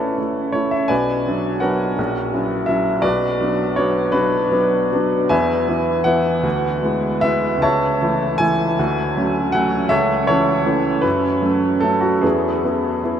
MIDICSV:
0, 0, Header, 1, 2, 480
1, 0, Start_track
1, 0, Key_signature, 3, "major"
1, 0, Tempo, 715137
1, 606, Time_signature, 6, 3, 24, 8
1, 2045, Tempo, 738916
1, 3005, Tempo, 768246
1, 4445, Tempo, 807537
1, 4925, Tempo, 755668
1, 6845, Tempo, 793651
1, 8380, End_track
2, 0, Start_track
2, 0, Title_t, "Grand piano"
2, 0, Program_c, 0, 0
2, 0, Control_c, 0, 64, 127
2, 0, Note_on_c, 0, 33, 43
2, 0, Note_on_c, 0, 57, 37
2, 0, Note_on_c, 0, 61, 49
2, 0, Note_on_c, 0, 64, 47
2, 0, Note_on_c, 0, 69, 66
2, 0, Note_on_c, 0, 71, 61
2, 0, Note_on_c, 0, 73, 62
2, 101, Note_off_c, 0, 57, 0
2, 116, Note_off_c, 0, 61, 0
2, 119, Note_off_c, 0, 64, 0
2, 121, Note_on_c, 0, 57, 32
2, 126, Note_on_c, 0, 61, 32
2, 129, Note_on_c, 0, 64, 36
2, 339, Note_off_c, 0, 57, 0
2, 342, Note_off_c, 0, 61, 0
2, 344, Note_off_c, 0, 64, 0
2, 352, Note_off_c, 0, 73, 0
2, 352, Note_on_c, 0, 73, 66
2, 360, Note_off_c, 0, 69, 0
2, 361, Note_on_c, 0, 57, 36
2, 367, Note_on_c, 0, 64, 41
2, 368, Note_on_c, 0, 61, 37
2, 479, Note_off_c, 0, 73, 0
2, 479, Note_on_c, 0, 76, 61
2, 580, Note_off_c, 0, 57, 0
2, 583, Note_off_c, 0, 64, 0
2, 584, Note_off_c, 0, 61, 0
2, 591, Note_on_c, 0, 80, 78
2, 599, Note_on_c, 0, 74, 52
2, 601, Note_off_c, 0, 71, 0
2, 601, Note_on_c, 0, 71, 58
2, 603, Note_off_c, 0, 76, 0
2, 606, Note_on_c, 0, 35, 45
2, 617, Control_c, 0, 64, 0
2, 624, Note_off_c, 0, 33, 0
2, 714, Control_c, 0, 64, 127
2, 841, Note_off_c, 0, 35, 0
2, 852, Note_on_c, 0, 54, 37
2, 858, Note_on_c, 0, 59, 35
2, 862, Note_on_c, 0, 62, 42
2, 1060, Note_off_c, 0, 74, 0
2, 1061, Note_off_c, 0, 71, 0
2, 1068, Note_off_c, 0, 54, 0
2, 1072, Note_off_c, 0, 59, 0
2, 1074, Note_off_c, 0, 62, 0
2, 1075, Note_on_c, 0, 78, 67
2, 1082, Note_on_c, 0, 70, 50
2, 1082, Note_on_c, 0, 73, 46
2, 1083, Note_off_c, 0, 80, 0
2, 1089, Note_on_c, 0, 54, 39
2, 1090, Note_on_c, 0, 59, 38
2, 1096, Note_on_c, 0, 62, 40
2, 1306, Note_off_c, 0, 54, 0
2, 1306, Note_off_c, 0, 59, 0
2, 1310, Note_off_c, 0, 62, 0
2, 1332, Note_on_c, 0, 34, 55
2, 1342, Control_c, 0, 64, 0
2, 1429, Control_c, 0, 64, 127
2, 1561, Note_on_c, 0, 54, 37
2, 1562, Note_off_c, 0, 34, 0
2, 1568, Note_on_c, 0, 61, 36
2, 1568, Note_on_c, 0, 64, 40
2, 1774, Note_off_c, 0, 70, 0
2, 1774, Note_off_c, 0, 73, 0
2, 1777, Note_off_c, 0, 54, 0
2, 1781, Note_off_c, 0, 61, 0
2, 1781, Note_off_c, 0, 64, 0
2, 1786, Note_on_c, 0, 76, 68
2, 1797, Note_off_c, 0, 78, 0
2, 1798, Note_on_c, 0, 54, 42
2, 1801, Note_on_c, 0, 61, 38
2, 1802, Note_on_c, 0, 64, 45
2, 2017, Note_off_c, 0, 54, 0
2, 2018, Note_off_c, 0, 61, 0
2, 2019, Note_off_c, 0, 64, 0
2, 2026, Note_on_c, 0, 74, 77
2, 2030, Note_on_c, 0, 66, 56
2, 2031, Note_on_c, 0, 71, 53
2, 2035, Note_off_c, 0, 76, 0
2, 2037, Note_on_c, 0, 35, 53
2, 2057, Control_c, 0, 64, 0
2, 2171, Control_c, 0, 64, 127
2, 2270, Note_off_c, 0, 35, 0
2, 2278, Note_on_c, 0, 54, 41
2, 2284, Note_on_c, 0, 62, 43
2, 2285, Note_on_c, 0, 59, 41
2, 2484, Note_off_c, 0, 66, 0
2, 2485, Note_off_c, 0, 71, 0
2, 2492, Note_off_c, 0, 54, 0
2, 2496, Note_off_c, 0, 59, 0
2, 2496, Note_off_c, 0, 62, 0
2, 2508, Note_off_c, 0, 74, 0
2, 2510, Note_on_c, 0, 73, 76
2, 2523, Note_on_c, 0, 59, 45
2, 2524, Note_on_c, 0, 54, 44
2, 2526, Note_on_c, 0, 62, 47
2, 2736, Note_off_c, 0, 54, 0
2, 2736, Note_off_c, 0, 59, 0
2, 2737, Note_off_c, 0, 62, 0
2, 2742, Note_on_c, 0, 71, 79
2, 2745, Note_on_c, 0, 66, 56
2, 2751, Note_on_c, 0, 62, 60
2, 2752, Note_off_c, 0, 73, 0
2, 2755, Note_on_c, 0, 59, 41
2, 2756, Note_on_c, 0, 54, 43
2, 2979, Note_off_c, 0, 59, 0
2, 2980, Note_off_c, 0, 54, 0
2, 2992, Note_off_c, 0, 62, 0
2, 3000, Note_on_c, 0, 59, 39
2, 3001, Note_on_c, 0, 54, 41
2, 3002, Note_on_c, 0, 62, 46
2, 3226, Note_off_c, 0, 54, 0
2, 3226, Note_off_c, 0, 59, 0
2, 3227, Note_off_c, 0, 62, 0
2, 3254, Note_on_c, 0, 54, 44
2, 3262, Note_on_c, 0, 59, 43
2, 3264, Note_on_c, 0, 62, 50
2, 3466, Note_off_c, 0, 66, 0
2, 3472, Note_off_c, 0, 54, 0
2, 3477, Note_off_c, 0, 59, 0
2, 3478, Note_off_c, 0, 62, 0
2, 3480, Note_off_c, 0, 71, 0
2, 3486, Note_on_c, 0, 80, 84
2, 3490, Note_on_c, 0, 71, 62
2, 3490, Note_on_c, 0, 76, 67
2, 3495, Note_on_c, 0, 40, 58
2, 3509, Control_c, 0, 64, 0
2, 3606, Control_c, 0, 64, 127
2, 3724, Note_off_c, 0, 40, 0
2, 3726, Note_on_c, 0, 52, 41
2, 3730, Note_on_c, 0, 59, 44
2, 3736, Note_on_c, 0, 64, 48
2, 3938, Note_off_c, 0, 71, 0
2, 3938, Note_off_c, 0, 76, 0
2, 3940, Note_off_c, 0, 52, 0
2, 3942, Note_off_c, 0, 59, 0
2, 3945, Note_off_c, 0, 64, 0
2, 3952, Note_on_c, 0, 78, 88
2, 3961, Note_off_c, 0, 80, 0
2, 3963, Note_on_c, 0, 52, 45
2, 3968, Note_on_c, 0, 59, 44
2, 3971, Note_on_c, 0, 64, 54
2, 4177, Note_off_c, 0, 52, 0
2, 4180, Note_off_c, 0, 59, 0
2, 4181, Note_off_c, 0, 64, 0
2, 4195, Note_on_c, 0, 38, 59
2, 4215, Control_c, 0, 64, 0
2, 4326, Control_c, 0, 64, 127
2, 4434, Note_off_c, 0, 38, 0
2, 4445, Note_on_c, 0, 56, 42
2, 4449, Note_on_c, 0, 59, 40
2, 4450, Note_on_c, 0, 64, 45
2, 4663, Note_off_c, 0, 56, 0
2, 4664, Note_off_c, 0, 59, 0
2, 4665, Note_off_c, 0, 64, 0
2, 4673, Note_on_c, 0, 76, 92
2, 4680, Note_off_c, 0, 78, 0
2, 4682, Note_on_c, 0, 56, 48
2, 4689, Note_on_c, 0, 59, 49
2, 4689, Note_on_c, 0, 64, 54
2, 4891, Note_on_c, 0, 37, 55
2, 4900, Note_off_c, 0, 56, 0
2, 4903, Note_off_c, 0, 59, 0
2, 4903, Note_off_c, 0, 64, 0
2, 4911, Note_off_c, 0, 76, 0
2, 4916, Note_on_c, 0, 81, 87
2, 4920, Note_on_c, 0, 76, 67
2, 4921, Note_on_c, 0, 73, 68
2, 4938, Control_c, 0, 64, 0
2, 5028, Control_c, 0, 64, 127
2, 5143, Note_off_c, 0, 37, 0
2, 5170, Note_on_c, 0, 52, 48
2, 5173, Note_on_c, 0, 57, 49
2, 5175, Note_on_c, 0, 64, 51
2, 5380, Note_off_c, 0, 76, 0
2, 5381, Note_off_c, 0, 73, 0
2, 5385, Note_off_c, 0, 52, 0
2, 5387, Note_off_c, 0, 57, 0
2, 5387, Note_off_c, 0, 64, 0
2, 5396, Note_on_c, 0, 80, 99
2, 5403, Note_off_c, 0, 81, 0
2, 5410, Note_on_c, 0, 52, 52
2, 5412, Note_on_c, 0, 57, 49
2, 5419, Note_on_c, 0, 64, 51
2, 5628, Note_off_c, 0, 52, 0
2, 5629, Note_off_c, 0, 57, 0
2, 5633, Note_off_c, 0, 64, 0
2, 5656, Note_on_c, 0, 38, 68
2, 5664, Control_c, 0, 64, 0
2, 5758, Control_c, 0, 64, 127
2, 5889, Note_off_c, 0, 38, 0
2, 5896, Note_on_c, 0, 54, 43
2, 5900, Note_on_c, 0, 57, 41
2, 5902, Note_on_c, 0, 61, 49
2, 6110, Note_off_c, 0, 54, 0
2, 6112, Note_off_c, 0, 57, 0
2, 6113, Note_off_c, 0, 61, 0
2, 6123, Note_on_c, 0, 78, 85
2, 6126, Note_off_c, 0, 80, 0
2, 6137, Note_on_c, 0, 54, 51
2, 6137, Note_on_c, 0, 57, 49
2, 6137, Note_on_c, 0, 61, 57
2, 6348, Note_off_c, 0, 54, 0
2, 6348, Note_off_c, 0, 57, 0
2, 6348, Note_off_c, 0, 61, 0
2, 6357, Note_on_c, 0, 76, 89
2, 6364, Note_off_c, 0, 78, 0
2, 6364, Note_on_c, 0, 73, 62
2, 6365, Note_on_c, 0, 69, 67
2, 6370, Note_on_c, 0, 37, 59
2, 6379, Control_c, 0, 64, 0
2, 6478, Control_c, 0, 64, 127
2, 6586, Note_off_c, 0, 73, 0
2, 6587, Note_off_c, 0, 69, 0
2, 6599, Note_off_c, 0, 37, 0
2, 6599, Note_on_c, 0, 73, 89
2, 6600, Note_off_c, 0, 76, 0
2, 6606, Note_on_c, 0, 64, 62
2, 6606, Note_on_c, 0, 69, 67
2, 6611, Note_on_c, 0, 52, 48
2, 6614, Note_on_c, 0, 57, 49
2, 6615, Note_on_c, 0, 61, 50
2, 6825, Note_off_c, 0, 52, 0
2, 6827, Note_off_c, 0, 57, 0
2, 6827, Note_off_c, 0, 61, 0
2, 6846, Note_on_c, 0, 52, 48
2, 6849, Note_on_c, 0, 57, 44
2, 6849, Note_on_c, 0, 61, 54
2, 7056, Note_off_c, 0, 64, 0
2, 7056, Note_off_c, 0, 69, 0
2, 7057, Note_off_c, 0, 52, 0
2, 7059, Note_off_c, 0, 57, 0
2, 7059, Note_off_c, 0, 61, 0
2, 7060, Note_on_c, 0, 71, 83
2, 7072, Note_on_c, 0, 42, 57
2, 7077, Note_off_c, 0, 73, 0
2, 7090, Control_c, 0, 64, 0
2, 7188, Control_c, 0, 64, 127
2, 7304, Note_on_c, 0, 54, 44
2, 7307, Note_off_c, 0, 42, 0
2, 7308, Note_on_c, 0, 57, 39
2, 7309, Note_on_c, 0, 61, 44
2, 7527, Note_off_c, 0, 54, 0
2, 7529, Note_off_c, 0, 57, 0
2, 7529, Note_off_c, 0, 61, 0
2, 7538, Note_on_c, 0, 69, 76
2, 7547, Note_off_c, 0, 71, 0
2, 7550, Note_on_c, 0, 54, 42
2, 7554, Note_on_c, 0, 57, 46
2, 7557, Note_on_c, 0, 61, 45
2, 7660, Note_on_c, 0, 66, 61
2, 7669, Note_off_c, 0, 69, 0
2, 7772, Note_off_c, 0, 54, 0
2, 7774, Note_off_c, 0, 57, 0
2, 7776, Note_off_c, 0, 61, 0
2, 7786, Note_on_c, 0, 68, 61
2, 7790, Note_off_c, 0, 66, 0
2, 7791, Note_on_c, 0, 64, 47
2, 7793, Note_on_c, 0, 59, 49
2, 7798, Note_on_c, 0, 40, 49
2, 7812, Control_c, 0, 64, 0
2, 7933, Control_c, 0, 64, 127
2, 8032, Note_off_c, 0, 59, 0
2, 8034, Note_off_c, 0, 40, 0
2, 8036, Note_off_c, 0, 64, 0
2, 8041, Note_on_c, 0, 59, 43
2, 8046, Note_on_c, 0, 64, 46
2, 8260, Note_off_c, 0, 59, 0
2, 8262, Note_off_c, 0, 64, 0
2, 8283, Note_on_c, 0, 59, 39
2, 8283, Note_on_c, 0, 64, 46
2, 8380, Note_off_c, 0, 59, 0
2, 8380, Note_off_c, 0, 64, 0
2, 8380, Note_off_c, 0, 68, 0
2, 8380, End_track
0, 0, End_of_file